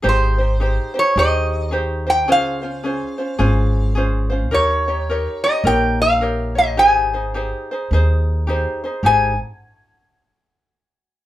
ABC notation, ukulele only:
X:1
M:4/4
L:1/8
Q:"Swing" 1/4=106
K:Ab
V:1 name="Ukulele"
[EGAc] [EGc] [EGAc] [EGc] [EGAc]2 [EGAc] [EGc] | [DFAc] [DFc] [DFAc] [DFc] [DFAc]2 [DFAc] [DFc] | [EGBd] [EGd] [EGBd] [EGd] [EGBd]2 [EGBd] [EGd] | [EGAc] [EAc] [EGAc] [EAc] [EAc]2 [EGAc] [EAc] |
[EGAc] z6 z |]